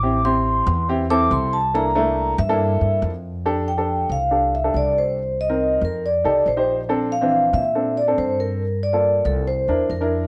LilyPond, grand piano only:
\new Staff \with { instrumentName = "Grand piano" } { \time 4/4 \key f \major \tempo 4 = 140 <c' e' g'>16 r16 <c' e' g'>4 r8 <c' e' g'>16 r16 <c' e' a'>4 r8 | <bes d' e' a'>16 r16 <a bes d' e'>4 r16 <bes d' e' a'>4. r8. | <d' g' a'>8 r16 <d' g' a'>8. r8 <d' g' a'>8 r16 <d' g' a'>4~ <d' g' a'>16 | r8. <c' ees' bes'>4~ <c' ees' bes'>16 r8 <ees' g' a'>8 r16 <ees' g' c''>8 r16 |
<c' d' a'>8 r16 <e c' d'>8. r8 <c' d' a'>8 r16 <c' d' a'>4~ <c' d' a'>16 | r8. <bes f' a'>4~ <bes f' a'>16 r8 <d' e' bes'>8 r16 <d' e' bes'>8 r16 | }